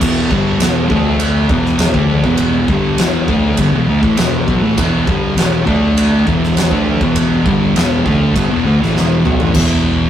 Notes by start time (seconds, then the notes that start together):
0.01 E1 E2 B2 E3, kick, crash
0.31 G1 G2 D3 G3, kick
0.59 E1 E2 B2 E3, snare, ride bell
0.89 D2 D3 A3 D4, kick
1.20 ride bell
1.49 E1 E2 B2 E3, kick
1.66 snare
1.79 snare, ride bell
1.94 D2 D3 A3 D4, kick
2.24 E1 E2 B2 E3, kick
2.37 kick, ride bell
2.68 G1 G2 D3 G3, kick
2.98 E1 E2 B2 E3, snare, ride bell
3.28 D2 D3 A3 D4, kick
3.57 G1 G2 D3, kick, ride bell
3.72 E1 E2 B2
3.86 D2 D3 A3
4.02 A1 A2 E3, kick
4.17 E1 E2 B2 E3, snare, ride bell
4.47 B1 B2 F#3, kick
4.60 A1 A2 E3
4.76 E1 E2 B2 E3, kick, ride bell
5.07 G1 G2 D3 G3, kick
5.36 E1 E2 B2 E3, snare, ride bell
5.66 D2 D3 A3 D4, kick
5.97 ride bell
6.25 E1 E2 B2 E3, kick
6.44 snare
6.57 snare, ride bell
6.71 D2 D3 A3 D4, kick
7.01 E1 E2 B2 E3, kick
7.16 kick, ride bell
7.46 G1 G2 D3 G3, kick
7.76 E1 E2 B2 E3, snare, ride bell
8.06 D2 D3 A3 D4, kick
8.35 G1 G2 D3, kick, ride bell
8.49 E1 E2 B2
8.65 D2 D3 A3
8.81 A1 A2 E3, snare
8.95 E1 E2 B2 E3, snare
9.24 B1 B2 F#3, mid tom
9.40 A1 A2 E3, floor tom
9.54 E1 E2 B2 E3, kick, crash